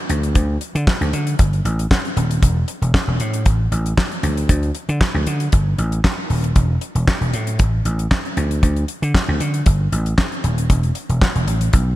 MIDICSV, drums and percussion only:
0, 0, Header, 1, 2, 480
1, 0, Start_track
1, 0, Tempo, 517241
1, 329, Time_signature, 4, 2, 24, 8
1, 11096, End_track
2, 0, Start_track
2, 0, Title_t, "Drums"
2, 88, Note_on_c, 9, 42, 85
2, 181, Note_off_c, 9, 42, 0
2, 217, Note_on_c, 9, 42, 51
2, 310, Note_off_c, 9, 42, 0
2, 328, Note_on_c, 9, 42, 97
2, 330, Note_on_c, 9, 36, 107
2, 420, Note_off_c, 9, 42, 0
2, 422, Note_off_c, 9, 36, 0
2, 566, Note_on_c, 9, 42, 65
2, 658, Note_off_c, 9, 42, 0
2, 700, Note_on_c, 9, 42, 47
2, 793, Note_off_c, 9, 42, 0
2, 809, Note_on_c, 9, 36, 122
2, 813, Note_on_c, 9, 38, 114
2, 817, Note_on_c, 9, 39, 84
2, 902, Note_off_c, 9, 36, 0
2, 906, Note_off_c, 9, 38, 0
2, 910, Note_off_c, 9, 39, 0
2, 941, Note_on_c, 9, 42, 34
2, 1034, Note_off_c, 9, 42, 0
2, 1051, Note_on_c, 9, 42, 76
2, 1144, Note_off_c, 9, 42, 0
2, 1177, Note_on_c, 9, 42, 59
2, 1269, Note_off_c, 9, 42, 0
2, 1290, Note_on_c, 9, 42, 104
2, 1293, Note_on_c, 9, 36, 111
2, 1382, Note_off_c, 9, 42, 0
2, 1386, Note_off_c, 9, 36, 0
2, 1422, Note_on_c, 9, 42, 34
2, 1515, Note_off_c, 9, 42, 0
2, 1535, Note_on_c, 9, 42, 75
2, 1628, Note_off_c, 9, 42, 0
2, 1663, Note_on_c, 9, 42, 52
2, 1756, Note_off_c, 9, 42, 0
2, 1771, Note_on_c, 9, 36, 112
2, 1775, Note_on_c, 9, 38, 114
2, 1779, Note_on_c, 9, 39, 94
2, 1864, Note_off_c, 9, 36, 0
2, 1868, Note_off_c, 9, 38, 0
2, 1872, Note_off_c, 9, 39, 0
2, 1903, Note_on_c, 9, 42, 29
2, 1996, Note_off_c, 9, 42, 0
2, 2013, Note_on_c, 9, 42, 80
2, 2106, Note_off_c, 9, 42, 0
2, 2141, Note_on_c, 9, 42, 54
2, 2234, Note_off_c, 9, 42, 0
2, 2251, Note_on_c, 9, 36, 109
2, 2251, Note_on_c, 9, 42, 101
2, 2344, Note_off_c, 9, 36, 0
2, 2344, Note_off_c, 9, 42, 0
2, 2486, Note_on_c, 9, 42, 72
2, 2579, Note_off_c, 9, 42, 0
2, 2620, Note_on_c, 9, 42, 47
2, 2713, Note_off_c, 9, 42, 0
2, 2729, Note_on_c, 9, 36, 114
2, 2732, Note_on_c, 9, 38, 111
2, 2736, Note_on_c, 9, 39, 87
2, 2822, Note_off_c, 9, 36, 0
2, 2825, Note_off_c, 9, 38, 0
2, 2829, Note_off_c, 9, 39, 0
2, 2968, Note_on_c, 9, 42, 77
2, 3061, Note_off_c, 9, 42, 0
2, 3095, Note_on_c, 9, 42, 62
2, 3188, Note_off_c, 9, 42, 0
2, 3208, Note_on_c, 9, 42, 91
2, 3212, Note_on_c, 9, 36, 109
2, 3300, Note_off_c, 9, 42, 0
2, 3304, Note_off_c, 9, 36, 0
2, 3453, Note_on_c, 9, 42, 78
2, 3545, Note_off_c, 9, 42, 0
2, 3580, Note_on_c, 9, 42, 50
2, 3673, Note_off_c, 9, 42, 0
2, 3689, Note_on_c, 9, 36, 99
2, 3691, Note_on_c, 9, 38, 126
2, 3695, Note_on_c, 9, 39, 96
2, 3782, Note_off_c, 9, 36, 0
2, 3784, Note_off_c, 9, 38, 0
2, 3788, Note_off_c, 9, 39, 0
2, 3818, Note_on_c, 9, 42, 30
2, 3911, Note_off_c, 9, 42, 0
2, 3929, Note_on_c, 9, 42, 83
2, 4021, Note_off_c, 9, 42, 0
2, 4059, Note_on_c, 9, 42, 53
2, 4152, Note_off_c, 9, 42, 0
2, 4168, Note_on_c, 9, 42, 104
2, 4170, Note_on_c, 9, 36, 104
2, 4261, Note_off_c, 9, 42, 0
2, 4262, Note_off_c, 9, 36, 0
2, 4295, Note_on_c, 9, 42, 34
2, 4388, Note_off_c, 9, 42, 0
2, 4405, Note_on_c, 9, 42, 73
2, 4497, Note_off_c, 9, 42, 0
2, 4537, Note_on_c, 9, 42, 47
2, 4630, Note_off_c, 9, 42, 0
2, 4648, Note_on_c, 9, 36, 124
2, 4649, Note_on_c, 9, 38, 119
2, 4654, Note_on_c, 9, 39, 85
2, 4741, Note_off_c, 9, 36, 0
2, 4742, Note_off_c, 9, 38, 0
2, 4747, Note_off_c, 9, 39, 0
2, 4886, Note_on_c, 9, 42, 68
2, 4979, Note_off_c, 9, 42, 0
2, 5012, Note_on_c, 9, 42, 55
2, 5105, Note_off_c, 9, 42, 0
2, 5126, Note_on_c, 9, 42, 96
2, 5131, Note_on_c, 9, 36, 103
2, 5218, Note_off_c, 9, 42, 0
2, 5224, Note_off_c, 9, 36, 0
2, 5368, Note_on_c, 9, 42, 75
2, 5461, Note_off_c, 9, 42, 0
2, 5496, Note_on_c, 9, 42, 52
2, 5589, Note_off_c, 9, 42, 0
2, 5608, Note_on_c, 9, 36, 106
2, 5608, Note_on_c, 9, 38, 122
2, 5613, Note_on_c, 9, 39, 86
2, 5701, Note_off_c, 9, 36, 0
2, 5701, Note_off_c, 9, 38, 0
2, 5706, Note_off_c, 9, 39, 0
2, 5846, Note_on_c, 9, 46, 77
2, 5939, Note_off_c, 9, 46, 0
2, 5975, Note_on_c, 9, 42, 51
2, 6068, Note_off_c, 9, 42, 0
2, 6085, Note_on_c, 9, 42, 92
2, 6088, Note_on_c, 9, 36, 117
2, 6177, Note_off_c, 9, 42, 0
2, 6181, Note_off_c, 9, 36, 0
2, 6323, Note_on_c, 9, 42, 72
2, 6416, Note_off_c, 9, 42, 0
2, 6455, Note_on_c, 9, 42, 53
2, 6547, Note_off_c, 9, 42, 0
2, 6567, Note_on_c, 9, 36, 126
2, 6568, Note_on_c, 9, 38, 115
2, 6573, Note_on_c, 9, 39, 90
2, 6659, Note_off_c, 9, 36, 0
2, 6661, Note_off_c, 9, 38, 0
2, 6665, Note_off_c, 9, 39, 0
2, 6697, Note_on_c, 9, 42, 36
2, 6789, Note_off_c, 9, 42, 0
2, 6807, Note_on_c, 9, 42, 76
2, 6899, Note_off_c, 9, 42, 0
2, 6933, Note_on_c, 9, 42, 59
2, 7026, Note_off_c, 9, 42, 0
2, 7044, Note_on_c, 9, 42, 95
2, 7050, Note_on_c, 9, 36, 119
2, 7137, Note_off_c, 9, 42, 0
2, 7143, Note_off_c, 9, 36, 0
2, 7288, Note_on_c, 9, 42, 78
2, 7381, Note_off_c, 9, 42, 0
2, 7415, Note_on_c, 9, 42, 49
2, 7508, Note_off_c, 9, 42, 0
2, 7528, Note_on_c, 9, 36, 117
2, 7528, Note_on_c, 9, 38, 125
2, 7533, Note_on_c, 9, 39, 95
2, 7621, Note_off_c, 9, 36, 0
2, 7621, Note_off_c, 9, 38, 0
2, 7625, Note_off_c, 9, 39, 0
2, 7658, Note_on_c, 9, 42, 31
2, 7751, Note_off_c, 9, 42, 0
2, 7767, Note_on_c, 9, 42, 80
2, 7860, Note_off_c, 9, 42, 0
2, 7897, Note_on_c, 9, 42, 57
2, 7990, Note_off_c, 9, 42, 0
2, 8008, Note_on_c, 9, 36, 105
2, 8008, Note_on_c, 9, 42, 101
2, 8101, Note_off_c, 9, 36, 0
2, 8101, Note_off_c, 9, 42, 0
2, 8133, Note_on_c, 9, 42, 36
2, 8226, Note_off_c, 9, 42, 0
2, 8244, Note_on_c, 9, 42, 67
2, 8336, Note_off_c, 9, 42, 0
2, 8377, Note_on_c, 9, 42, 47
2, 8469, Note_off_c, 9, 42, 0
2, 8487, Note_on_c, 9, 36, 113
2, 8490, Note_on_c, 9, 38, 119
2, 8494, Note_on_c, 9, 39, 90
2, 8580, Note_off_c, 9, 36, 0
2, 8583, Note_off_c, 9, 38, 0
2, 8587, Note_off_c, 9, 39, 0
2, 8726, Note_on_c, 9, 42, 79
2, 8819, Note_off_c, 9, 42, 0
2, 8852, Note_on_c, 9, 42, 54
2, 8945, Note_off_c, 9, 42, 0
2, 8964, Note_on_c, 9, 42, 92
2, 8969, Note_on_c, 9, 36, 117
2, 9056, Note_off_c, 9, 42, 0
2, 9062, Note_off_c, 9, 36, 0
2, 9210, Note_on_c, 9, 42, 76
2, 9303, Note_off_c, 9, 42, 0
2, 9336, Note_on_c, 9, 42, 50
2, 9428, Note_off_c, 9, 42, 0
2, 9447, Note_on_c, 9, 36, 105
2, 9447, Note_on_c, 9, 38, 120
2, 9452, Note_on_c, 9, 39, 94
2, 9540, Note_off_c, 9, 36, 0
2, 9540, Note_off_c, 9, 38, 0
2, 9544, Note_off_c, 9, 39, 0
2, 9577, Note_on_c, 9, 42, 30
2, 9669, Note_off_c, 9, 42, 0
2, 9687, Note_on_c, 9, 42, 74
2, 9780, Note_off_c, 9, 42, 0
2, 9818, Note_on_c, 9, 42, 57
2, 9911, Note_off_c, 9, 42, 0
2, 9927, Note_on_c, 9, 42, 103
2, 9928, Note_on_c, 9, 36, 101
2, 10020, Note_off_c, 9, 42, 0
2, 10021, Note_off_c, 9, 36, 0
2, 10053, Note_on_c, 9, 42, 37
2, 10146, Note_off_c, 9, 42, 0
2, 10163, Note_on_c, 9, 42, 73
2, 10255, Note_off_c, 9, 42, 0
2, 10297, Note_on_c, 9, 42, 51
2, 10390, Note_off_c, 9, 42, 0
2, 10407, Note_on_c, 9, 36, 116
2, 10410, Note_on_c, 9, 38, 101
2, 10415, Note_on_c, 9, 39, 88
2, 10500, Note_off_c, 9, 36, 0
2, 10503, Note_off_c, 9, 38, 0
2, 10508, Note_off_c, 9, 39, 0
2, 10538, Note_on_c, 9, 42, 34
2, 10631, Note_off_c, 9, 42, 0
2, 10649, Note_on_c, 9, 42, 78
2, 10742, Note_off_c, 9, 42, 0
2, 10773, Note_on_c, 9, 42, 53
2, 10866, Note_off_c, 9, 42, 0
2, 10886, Note_on_c, 9, 42, 93
2, 10891, Note_on_c, 9, 36, 118
2, 10979, Note_off_c, 9, 42, 0
2, 10984, Note_off_c, 9, 36, 0
2, 11096, End_track
0, 0, End_of_file